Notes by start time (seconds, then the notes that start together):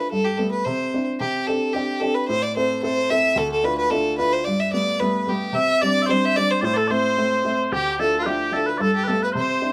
0.00 B4
0.11 G2 A4
0.25 G4
0.37 G3 A3 B3 A4
0.51 B4
0.65 C3 C5
0.94 C4 D4 E4
1.20 C3 G4
1.47 C4 D4 G4 A4
1.73 C4 D4 G4
2.00 C4 D4 G4 A4
2.14 B4
2.28 A2 C5
2.42 D5
2.56 C4 E4 A4 C5
2.83 C4 E4 A4 C5
3.10 C4 E4 A4 E5
3.36 D2 A4
3.52 A4
3.63 D4 E4 F4 B4
3.78 B4
3.90 D4 E4 F4 A4
4.18 D4 E4 F4 B4
4.32 C5
4.45 G2 D5
4.60 E5
4.72 G3 A3 B3 D5
4.99 G3 A3 B3 B4
5.27 G3 A3 B3 G4
5.53 C3 E5
5.81 G3 C4 D4 D5
6.02 C5 E5
6.09 G3 C4 D4 C5
6.25 E5
6.36 G3 C4 D4 D5
6.50 C5
6.61 A2 C5 D5
6.74 A4 D5
6.87 A3 C4 E4 C5 D5
7.18 A3 C4 E4
7.44 A3 C4 E4
7.72 D2 G4
7.99 F3 D4 E4 A4
8.20 F4 B4
8.26 F3 D4 E4 G4
8.51 F3 D4 E4 A4
8.56 A4
8.66 B4
8.78 G2 A4 D5
8.82 A4
8.96 G4
9.04 G3 A3 B3 A4 B4
9.10 A4
9.23 B4
9.32 C3 C5
9.38 C5
9.62 C4 D4 E4